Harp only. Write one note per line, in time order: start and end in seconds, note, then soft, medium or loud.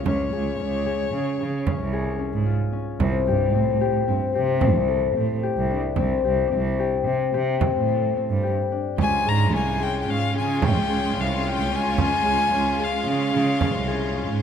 0.00 2.05 F4 medium
0.00 0.32 G#4 medium
0.06 0.59 C#4 medium
0.33 0.86 G#4 medium
0.59 1.13 C#4 medium
0.86 1.40 G#4 medium
1.13 1.66 C#4 medium
1.41 1.93 G#4 medium
1.67 2.18 C#4 medium
1.93 3.34 G#4 medium
2.19 2.72 C#4 medium
2.46 4.98 F4 medium
2.72 3.06 C#4 medium
3.00 3.54 C4 medium
3.28 3.81 G4 medium
3.55 4.07 C4 medium
3.81 4.35 G4 medium
4.08 4.61 C4 medium
4.35 5.43 G4 medium
4.62 5.16 C4 medium
4.89 7.08 A4 medium
5.17 5.97 C4 medium
5.43 6.24 G4 medium
5.70 8.50 D4 medium
5.97 6.51 C4 medium
6.24 6.79 G4 medium
6.52 7.06 C4 medium
6.79 7.34 G4 medium
7.06 7.60 C4 medium
7.34 8.43 G4 medium
7.60 8.16 C4 medium
7.89 9.32 A4 medium
8.16 9.05 C4 medium
8.43 9.32 G4 medium
8.72 9.05 D4 medium
8.99 9.53 C#4 medium
9.26 9.80 G#4 medium
9.54 10.07 C#4 medium
9.80 10.35 G#4 medium
10.08 10.61 C#4 medium
10.35 10.89 G#4 medium
10.62 11.16 C#4 medium
10.89 12.25 G#4 medium
11.17 11.70 C#4 medium
11.44 13.97 F4 medium
11.71 11.98 C#4 medium
11.98 12.52 C#4 medium
12.25 12.79 G#4 medium
12.53 13.07 C#4 medium
12.80 13.34 G#4 medium
13.07 13.60 C#4 medium
13.34 13.87 G#4 medium
13.61 14.14 C#4 medium
13.88 14.42 G#4 medium
14.15 14.42 C#4 medium